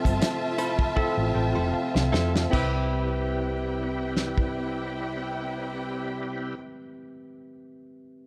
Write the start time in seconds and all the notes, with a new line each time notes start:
Already playing: C3 F3 A3 C4 F4 A4 E5 A5
0.04 G1, muted clean electric guitar stroke, kick, closed hi-hat
0.21 muted clean electric guitar stroke, snare, closed hi-hat
0.58 E4 A4 C5 B5, closed hi-hat
0.78 muted clean electric guitar stroke, kick
0.96 C4 E4 F4 A4 C5 E5 A5, kick
1.17 A1
1.35 A1 G5, muted clean electric guitar stroke
1.55 F1 E4 A4 C5
1.73 F5, muted clean electric guitar stroke, muted fingered electric bass stroke
1.94 C2, muted clean electric guitar stroke, snare
2.12 F2 E4 A4 C5 E5, snare
2.36 snare
2.50 C2 C4 E4 G4 B4 E5 G5, kick, crash
2.54 C3 G3 E4 G4 B4
4.17 snare
4.38 kick